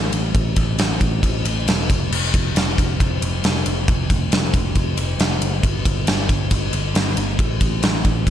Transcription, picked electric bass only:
Already playing: A1
0.12 A1
0.35 A1
0.57 A1
0.78 A1
1.01 A1
1.23 A1
1.44 A1
1.66 E1
1.90 F1
2.11 F1
2.34 F1
2.55 F1
2.78 F1
3.00 F1
3.22 F1
3.43 F1
3.66 F1
3.88 F1
4.10 F1
4.31 F1
4.54 F1
4.75 F1
4.97 F1
5.19 F1
5.41 F#1
5.63 G1
5.86 G1
6.07 G1
6.29 G1
6.51 G1
6.73 G1
6.94 G1
7.16 G1
7.39 A1
7.61 A1
7.82 A1
8.05 A1
8.27 A1

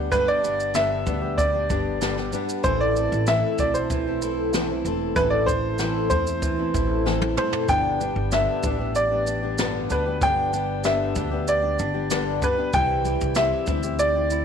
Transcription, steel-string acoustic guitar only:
Already playing: G3 B3 D4 G4
0.11 G2 D3 G3 B3 D4 G4
0.43 G3 B3 D4 G4
0.74 G2 D3 G3 B3 D4 G4
1.06 G3 B3 D4 G4
1.22 G3 B3 D4 G4
1.53 G3 B3 D4 G4
1.69 G3 B3 D4 G4
2.01 G2 D3 G3 B3 D4 G4
2.17 G3 B3 D4 G4
2.32 G3 B3 D4 G4
2.65 A2 E3 A3 C4 E4 A4
2.96 A3 C4 E4 A4
3.28 A2 E3 A3 C4 E4 A4
3.59 A3 C4 E4 A4
3.75 A3 C4 E4 A4
4.07 A3 C4 E4 A4
4.23 A3 C4 E4 A4
4.54 A2 E3 A3 C4 E4 A4
4.69 A3 C4 E4 A4
4.85 A3 C4 E4 A4
5.18 A2 E3 A3 C4 E4 A4
5.48 A3 C4 E4 A4
5.80 A2 E3 A3 C4 E4 A4
6.11 A3 C4 E4 A4
6.27 A3 C4 E4 A4
6.58 A3 C4 E4 A4
6.74 A3 C4 E4 A4
7.05 A2 E3 A3 C4 E4 A4
7.21 A3 C4 E4 A4
7.37 A3 C4 E4 A4
7.69 G2 D3 G3 B3 D4 G4
8.01 G3 B3 D4 G4
8.33 G2 D3 G3 B3 D4 G4
8.64 G3 B3 D4 G4
8.79 G3 B3 D4 G4
9.11 G3 B3 D4 G4
9.42 G3 B3 D4 G4
9.59 G2 D3 G3 B3 D4 G4
9.90 G3 B3 D4 G4
10.06 G3 B3 D4 G4
10.21 G2 D3 G3 B3 D4 G4
10.52 G3 B3 D4 G4
10.83 G2 D3 G3 B3 D4 G4
11.16 G3 B3 D4 G4
11.31 G3 B3 D4 G4
11.62 G3 B3 D4 G4
11.94 G3 B3 D4 G4
12.10 G2 D3 G3 B3 D4 G4
12.41 G3 B3 D4 G4
12.57 G3 B3 D4 G4
12.73 C3 G3 C4 E4 G4
13.04 G3 C4 E4 G4
13.37 C3 G3 C4 E4 G4
13.68 G3 C4 E4 G4
13.84 C4 E4 G4
14.15 C4 E4 G4

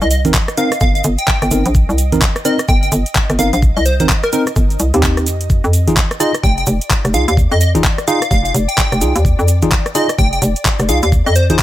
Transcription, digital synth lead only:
0.02 D#5
0.11 D#5
0.58 F5
0.81 F5
0.95 F5
1.18 G5
2.45 D#5
2.68 G5
2.83 G5
3.39 F5
3.53 F5
3.76 D#5
3.86 C5
4.00 C5
4.23 A#4
4.33 A#4
6.20 D#5
6.43 G5
6.58 G5
7.14 F5
7.28 F5
7.52 D#5
7.61 D#5
8.08 F5
8.31 F5
8.45 F5
8.68 G5
9.95 D#5
10.18 G5
10.33 G5
10.89 F5
11.03 F5
11.26 D#5
11.36 C5
11.50 C5

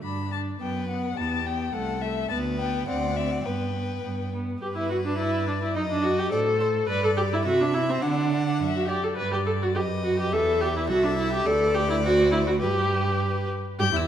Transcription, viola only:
0.04 D4
0.32 D4
0.61 B3
0.89 B3
1.18 B3
1.46 B3
1.74 A3
2.03 A3
2.31 B3
2.61 B3
2.89 C4
3.18 C4
3.47 B3
3.75 B3
4.04 B3
4.32 B3
4.61 G4
4.76 E4
4.90 F#4
5.05 D4
5.18 E4
5.47 D4
5.63 E4
5.76 D#4
5.91 D4
6.04 F#4
6.19 G4
6.32 A4
6.89 B4
7.04 A4
7.17 G4
7.33 E4
7.46 F#4
7.61 D4
7.74 E4
7.90 C4
8.02 D4
8.75 F#4
8.88 G4
9.03 A4
9.17 B4
9.32 G4
9.46 A4
9.62 F#4
9.75 G4
10.04 F#4
10.20 G4
10.33 A4
10.61 G4
10.76 E4
10.89 F#4
11.04 D4
11.17 E4
11.33 G4
11.46 A4
11.75 G4
11.90 E4
12.03 F#4
12.32 E4
12.47 F#4
12.60 G4
13.79 G4
13.95 E4

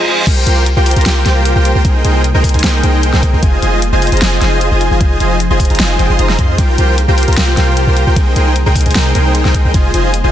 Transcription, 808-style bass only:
0.27 C2
0.47 C2
0.77 C2
0.96 C2
1.06 C2
1.25 C2
1.56 C2
1.75 C2
1.85 C2
2.04 C2
2.34 C2
2.54 C2
2.64 C2
2.83 C2
3.13 C2
3.33 C2
3.43 F1
3.62 F1
3.92 F1
4.12 F1
4.22 F1
4.41 F1
4.71 F1
4.91 F1
5.01 F1
5.20 F1
5.50 F1
5.70 F1
5.79 F1
5.99 F1
6.10 F1
6.19 F1
6.39 F2
6.58 C2
6.78 C2
7.08 C2
7.28 C2
7.37 C2
7.57 C2
7.87 C2
8.07 C2
8.16 C2
8.36 C2
8.66 C2
8.86 C2
8.95 C2
9.15 C2
9.45 C2
9.65 C2
9.74 F1
9.94 F1
10.24 F1

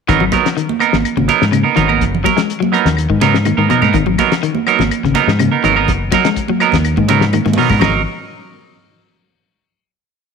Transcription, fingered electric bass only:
0.09 G#1
0.93 G#1
1.17 G#1
1.42 G#2
1.77 G#1
2.01 F#1
2.85 D#2
3.10 G#2
3.58 G#2
3.70 muted fingered electric bass stroke
3.82 G#2
3.94 G#1
4.79 G#1
5.04 G#1
5.27 G#2
5.64 G#1
5.89 F#1
6.73 D#2
6.97 G#2
7.46 G#2
7.59 muted fingered electric bass stroke
7.70 G#2
7.82 G#1

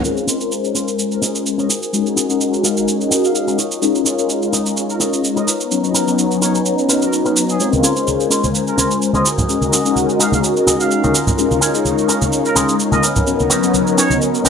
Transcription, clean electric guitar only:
0.27 C#4 G#4 A#4 C5
0.74 C#4 G#4 A#4 C5
0.98 muted clean electric guitar stroke
1.22 C#4 G#4 A#4 D#5
1.58 C#4 G#4 A#4 C#5
1.69 D#4 F#4 G#4 A#4
2.16 D#4 F#4 G#4 A#4
2.63 D#4 F#4 G#4 A#4
2.87 muted clean electric guitar stroke
3.11 D#4 F#4 G#4 A#4
3.35 D#5
3.47 D#4 F#4 G#4 A#4
3.58 D#4 F4 A#4 C#5
4.05 D#4 F4 A#4 C#5
4.52 D#4 F4 A#4 D#5
4.76 muted clean electric guitar stroke
5.00 D#4 F4 A#4 C#5
5.36 D#4 F4 A#4 C#5
5.47 D#4 A#4 B4 C#5
5.94 D#4 A#4 B4 C#5
6.41 D#4 A#4 B4 C#5
6.65 muted clean electric guitar stroke
6.89 D#4 A#4 B4 C#5
7.25 D#4 A#4 B4 C#5
7.49 muted clean electric guitar stroke
7.83 C#4 G#4 A#4 C5
8.30 C#4 G#4 A#4 C5
8.54 muted clean electric guitar stroke
8.77 C#4 G#4 A#4 C5
9.14 C#4 G#4 A#4 C5
9.25 D#4 F#4 G#4 A#4
9.72 D#4 F#4 G#4 A#4
10.19 D#4 F#4 G#4 A#4
10.43 muted clean electric guitar stroke
10.66 D#4 F#4 G#4 A#4
11.03 D#4 F#4 G#4 C#5
11.14 C#4 D#4 F4 A#4
11.61 C#4 D#4 F4 C#5
12.08 C#4 D#4 F4 A#4
12.32 muted clean electric guitar stroke
12.55 C#4 D#4 F4 G#4
12.92 C#4 D#4 F4 A#4
13.02 B3 C#4 D#4 A#4
13.50 B3 C#4 D#4 A#4
13.97 B3 C#4 D#4 F#4
14.21 muted clean electric guitar stroke
14.45 B3 C#4 D#4 A#4 G#5

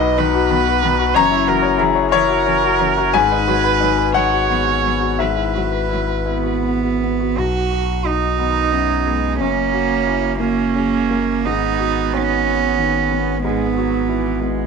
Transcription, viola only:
Already playing: D#5
0.18 B4
1.15 C#5
1.48 A#4
1.80 G#4
2.12 A#4
3.15 B4
4.15 C#5
5.20 B4
8.40 D#3
8.72 F#3
9.06 G#3
9.39 A#3
10.40 C#4
11.44 B3
13.43 G#3
13.76 F#3
14.09 E3
14.40 G#3

